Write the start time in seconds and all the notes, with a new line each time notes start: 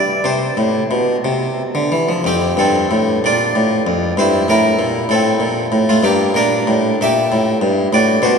Already playing: D5
0.24 C3 C5
0.57 A2
0.91 B2
1.25 C3
1.75 D3
1.92 E3
2.09 F3
2.24 F2 C4 G4
2.57 G2 C4 A4
2.91 A2
3.24 A#2 F4 D5
3.55 A2
3.87 F2
4.17 G2 E4 C5
4.48 A2 E4 A#4
4.79 A#2
5.09 A2 C4 A4
5.40 A#2
5.72 A2
5.89 A3 F4
6.03 G2 A#3 G4
6.34 A#2 D4 A#4
6.67 A2
7.01 A#2 G4 E5
7.32 A2
7.62 G2
7.93 A2 F#4 D5
8.22 B2 F#4 C5